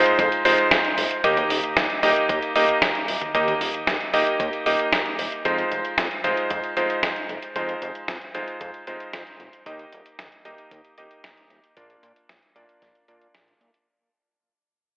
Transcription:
Already playing: G#3 D#4 F4 C5
0.06 closed hi-hat
0.19 F2, kick, closed hi-hat
0.32 closed hi-hat
0.45 F1 G#3 D#4 F4 C5, open hi-hat
0.58 closed hi-hat
0.71 F2, kick, snare, closed hi-hat
0.85 closed hi-hat
0.98 F1, open hi-hat
1.11 closed hi-hat
1.24 D#2 A#3 D#4 G4 D#5, kick, closed hi-hat
1.37 closed hi-hat, high tom
1.50 D#1, open hi-hat
1.64 closed hi-hat
1.77 D#2, kick, snare, closed hi-hat
1.90 closed hi-hat
2.03 D#1 A#3 D#4 G4 D#5, open hi-hat
2.16 closed hi-hat
2.29 D#2, kick, closed hi-hat
2.42 closed hi-hat
2.56 D#1 A#3 D#4 G4 D#5, open hi-hat
2.69 closed hi-hat
2.82 D#2, kick, snare, closed hi-hat
2.95 closed hi-hat
3.08 D#1, open hi-hat
3.22 closed hi-hat, high tom
3.35 D#2 A#3 D#4 G4 D#5, kick, closed hi-hat
3.48 closed hi-hat, high tom
3.61 D#1, open hi-hat
3.74 closed hi-hat
3.87 D#2, kick, snare, closed hi-hat
4.01 closed hi-hat
4.14 D#1 A#3 D#4 G4 D#5, open hi-hat
4.27 closed hi-hat
4.40 D#2, kick, closed hi-hat
4.53 closed hi-hat
4.66 D#1 A#3 D#4 G4 D#5, open hi-hat
4.79 closed hi-hat
4.93 D#2, kick, snare, closed hi-hat
5.06 closed hi-hat
5.19 D#1, open hi-hat
5.32 closed hi-hat
5.45 F2 G#3 D#4 F4 C5, kick, closed hi-hat
5.58 closed hi-hat
5.71 F1, closed hi-hat
5.85 closed hi-hat
5.98 F2, kick, snare, closed hi-hat
6.11 closed hi-hat
6.24 F1 G#3 D#4 F4 C5, closed hi-hat
6.37 closed hi-hat
6.50 F2, kick, closed hi-hat
6.64 closed hi-hat
6.77 F1 G#3 D#4 F4 C5, closed hi-hat
6.90 closed hi-hat
7.03 F2, kick, snare, closed hi-hat
7.16 closed hi-hat
7.29 F1, closed hi-hat
7.42 closed hi-hat
7.56 F2 G#3 D#4 F4 C5, kick, closed hi-hat
7.69 closed hi-hat
7.82 F1, closed hi-hat
7.95 closed hi-hat
8.08 F2, kick, snare, closed hi-hat
8.21 closed hi-hat
8.35 F1 G#3 D#4 F4 C5, closed hi-hat
8.48 closed hi-hat
8.61 F2, kick, closed hi-hat
8.74 closed hi-hat
8.87 F1 G#3 D#4 F4 C5, closed hi-hat
9.00 closed hi-hat
9.13 F2, kick, snare, closed hi-hat
9.27 closed hi-hat
9.40 F1, closed hi-hat
9.53 closed hi-hat
9.66 D#2 A#3 D#4 G4 D#5, kick, closed hi-hat
9.79 closed hi-hat
9.92 D#1, closed hi-hat
10.06 closed hi-hat
10.19 D#2, kick, snare, closed hi-hat
10.32 closed hi-hat
10.45 D#1 A#3 D#4 G4 D#5, closed hi-hat
10.58 closed hi-hat
10.71 D#2, kick, closed hi-hat
10.85 closed hi-hat
10.98 D#1 A#3 D#4 G4 D#5, closed hi-hat
11.11 closed hi-hat
11.24 D#2, kick, snare, closed hi-hat
11.37 closed hi-hat
11.50 D#1, closed hi-hat
11.64 closed hi-hat
11.77 A#1 A#3 D4 F4 D5, kick, closed hi-hat
11.90 closed hi-hat
12.03 A#2, closed hi-hat
12.16 closed hi-hat
12.29 A#1, kick, snare, closed hi-hat
12.43 closed hi-hat
12.56 A#2 A#3 D4 F4 D5, closed hi-hat
12.69 closed hi-hat
12.82 A#1, kick, snare, closed hi-hat
12.95 closed hi-hat
13.08 A#2 A#3 D4 F4 D5, closed hi-hat
13.21 closed hi-hat
13.35 A#1, kick, snare, closed hi-hat
13.48 closed hi-hat
13.61 A#2, closed hi-hat
13.74 closed hi-hat

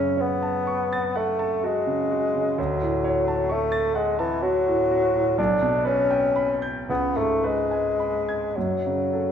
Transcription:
Already playing: F#2 C#3 C#4
0.17 B3 C#5
0.42 A5
0.67 C#6
0.93 A6
1.16 A3 F#5
1.39 A5
1.63 G#3 F#4
1.86 C#3
2.11 F#4
2.34 C#3
2.58 D2 F#3
2.82 A2
3.04 C#5
3.28 A5
3.49 A3 C#6
3.72 A6
3.95 G#3 F#5
4.19 E3 A5
4.42 F#3 F#4
4.67 A2
4.91 F#4
5.15 A2
5.38 B1 D4
5.62 B2
5.85 C#4 B4
6.11 G5
6.36 B5
6.62 G6
6.89 C#2 B3
7.16 G#2 A3
7.44 G#3 B4
7.71 G#5
8.00 B5
8.29 G#6
8.56 F#2 F#3
8.86 C#3
9.13 A4

